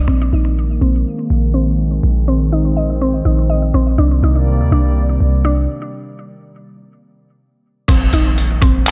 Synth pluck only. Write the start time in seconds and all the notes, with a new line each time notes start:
0.08 C4
0.33 D#4
0.81 C4
1.54 C4
2.28 C4
2.52 D#4
2.77 D#5
3.01 C4
3.25 D#4
3.50 D#5
3.74 C4
3.98 D4
4.24 D#4
4.72 D4
5.45 D4
7.88 C4
8.13 D#4
8.62 C4